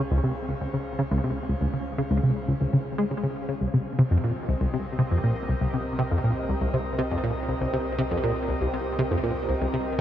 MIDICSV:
0, 0, Header, 1, 4, 480
1, 0, Start_track
1, 0, Tempo, 500000
1, 1547, Time_signature, 4, 2, 24, 8
1, 9608, End_track
2, 0, Start_track
2, 0, Title_t, "Analog synth pad"
2, 0, Program_c, 0, 89
2, 0, Note_on_c, 0, 61, 61
2, 0, Note_on_c, 0, 68, 77
2, 0, Note_on_c, 0, 72, 78
2, 0, Note_on_c, 0, 77, 76
2, 3466, Note_off_c, 0, 68, 0
2, 3466, Note_on_c, 0, 60, 84
2, 3467, Note_off_c, 0, 61, 0
2, 3712, Note_on_c, 0, 75, 76
2, 4042, Note_on_c, 0, 67, 75
2, 4521, Note_on_c, 0, 70, 64
2, 4894, Note_off_c, 0, 77, 0
2, 5288, Note_off_c, 0, 72, 0
2, 9608, Note_off_c, 0, 60, 0
2, 9608, Note_off_c, 0, 67, 0
2, 9608, Note_off_c, 0, 70, 0
2, 9608, Note_off_c, 0, 75, 0
2, 9608, End_track
3, 0, Start_track
3, 0, Title_t, "Synth arpeggio sound"
3, 0, Program_c, 1, 84
3, 107, Note_on_c, 1, 37, 95
3, 188, Note_off_c, 1, 37, 0
3, 228, Note_on_c, 1, 48, 72
3, 308, Note_off_c, 1, 48, 0
3, 468, Note_on_c, 1, 37, 72
3, 521, Note_off_c, 1, 37, 0
3, 588, Note_on_c, 1, 37, 77
3, 641, Note_off_c, 1, 37, 0
3, 707, Note_on_c, 1, 49, 72
3, 739, Note_off_c, 1, 49, 0
3, 947, Note_on_c, 1, 49, 99
3, 979, Note_off_c, 1, 49, 0
3, 1068, Note_on_c, 1, 37, 94
3, 1148, Note_off_c, 1, 37, 0
3, 1186, Note_on_c, 1, 48, 70
3, 1268, Note_off_c, 1, 48, 0
3, 1426, Note_on_c, 1, 37, 70
3, 1481, Note_off_c, 1, 37, 0
3, 1547, Note_on_c, 1, 37, 74
3, 1601, Note_off_c, 1, 37, 0
3, 1666, Note_on_c, 1, 49, 71
3, 1699, Note_off_c, 1, 49, 0
3, 1905, Note_on_c, 1, 49, 99
3, 1938, Note_off_c, 1, 49, 0
3, 2026, Note_on_c, 1, 37, 96
3, 2107, Note_off_c, 1, 37, 0
3, 2145, Note_on_c, 1, 48, 72
3, 2227, Note_off_c, 1, 48, 0
3, 2386, Note_on_c, 1, 37, 73
3, 2441, Note_off_c, 1, 37, 0
3, 2507, Note_on_c, 1, 37, 77
3, 2561, Note_off_c, 1, 37, 0
3, 2627, Note_on_c, 1, 49, 71
3, 2659, Note_off_c, 1, 49, 0
3, 2866, Note_on_c, 1, 56, 98
3, 2921, Note_off_c, 1, 56, 0
3, 2987, Note_on_c, 1, 49, 77
3, 3019, Note_off_c, 1, 49, 0
3, 3107, Note_on_c, 1, 49, 71
3, 3139, Note_off_c, 1, 49, 0
3, 3348, Note_on_c, 1, 49, 68
3, 3401, Note_off_c, 1, 49, 0
3, 3467, Note_on_c, 1, 36, 73
3, 3521, Note_off_c, 1, 36, 0
3, 3588, Note_on_c, 1, 48, 72
3, 3620, Note_off_c, 1, 48, 0
3, 3828, Note_on_c, 1, 48, 99
3, 3860, Note_off_c, 1, 48, 0
3, 3948, Note_on_c, 1, 41, 78
3, 4001, Note_off_c, 1, 41, 0
3, 4069, Note_on_c, 1, 46, 70
3, 4149, Note_off_c, 1, 46, 0
3, 4308, Note_on_c, 1, 36, 72
3, 4362, Note_off_c, 1, 36, 0
3, 4428, Note_on_c, 1, 36, 79
3, 4481, Note_off_c, 1, 36, 0
3, 4549, Note_on_c, 1, 48, 70
3, 4580, Note_off_c, 1, 48, 0
3, 4790, Note_on_c, 1, 48, 98
3, 4821, Note_off_c, 1, 48, 0
3, 4910, Note_on_c, 1, 41, 76
3, 4962, Note_off_c, 1, 41, 0
3, 5030, Note_on_c, 1, 46, 72
3, 5109, Note_off_c, 1, 46, 0
3, 5268, Note_on_c, 1, 36, 69
3, 5321, Note_off_c, 1, 36, 0
3, 5388, Note_on_c, 1, 36, 75
3, 5441, Note_off_c, 1, 36, 0
3, 5508, Note_on_c, 1, 48, 71
3, 5540, Note_off_c, 1, 48, 0
3, 5748, Note_on_c, 1, 48, 102
3, 5780, Note_off_c, 1, 48, 0
3, 5868, Note_on_c, 1, 41, 78
3, 5922, Note_off_c, 1, 41, 0
3, 5989, Note_on_c, 1, 46, 71
3, 6069, Note_off_c, 1, 46, 0
3, 6230, Note_on_c, 1, 36, 75
3, 6282, Note_off_c, 1, 36, 0
3, 6348, Note_on_c, 1, 36, 78
3, 6401, Note_off_c, 1, 36, 0
3, 6467, Note_on_c, 1, 48, 74
3, 6499, Note_off_c, 1, 48, 0
3, 6708, Note_on_c, 1, 48, 98
3, 6739, Note_off_c, 1, 48, 0
3, 6828, Note_on_c, 1, 41, 79
3, 6881, Note_off_c, 1, 41, 0
3, 6947, Note_on_c, 1, 46, 70
3, 7028, Note_off_c, 1, 46, 0
3, 7187, Note_on_c, 1, 36, 70
3, 7241, Note_off_c, 1, 36, 0
3, 7308, Note_on_c, 1, 36, 76
3, 7361, Note_off_c, 1, 36, 0
3, 7426, Note_on_c, 1, 48, 73
3, 7459, Note_off_c, 1, 48, 0
3, 7666, Note_on_c, 1, 48, 103
3, 7699, Note_off_c, 1, 48, 0
3, 7786, Note_on_c, 1, 41, 79
3, 7841, Note_off_c, 1, 41, 0
3, 7907, Note_on_c, 1, 46, 72
3, 7988, Note_off_c, 1, 46, 0
3, 8146, Note_on_c, 1, 36, 73
3, 8201, Note_off_c, 1, 36, 0
3, 8267, Note_on_c, 1, 36, 78
3, 8321, Note_off_c, 1, 36, 0
3, 8385, Note_on_c, 1, 48, 71
3, 8418, Note_off_c, 1, 48, 0
3, 8627, Note_on_c, 1, 48, 98
3, 8659, Note_off_c, 1, 48, 0
3, 8746, Note_on_c, 1, 41, 81
3, 8801, Note_off_c, 1, 41, 0
3, 8865, Note_on_c, 1, 46, 73
3, 8947, Note_off_c, 1, 46, 0
3, 9107, Note_on_c, 1, 36, 72
3, 9161, Note_off_c, 1, 36, 0
3, 9227, Note_on_c, 1, 36, 76
3, 9281, Note_off_c, 1, 36, 0
3, 9346, Note_on_c, 1, 48, 72
3, 9379, Note_off_c, 1, 48, 0
3, 9608, End_track
4, 0, Start_track
4, 0, Title_t, "Sub bass"
4, 0, Program_c, 2, 38
4, 0, Note_on_c, 2, 37, 88
4, 3442, Note_off_c, 2, 37, 0
4, 3466, Note_on_c, 2, 36, 85
4, 9608, Note_off_c, 2, 36, 0
4, 9608, End_track
0, 0, End_of_file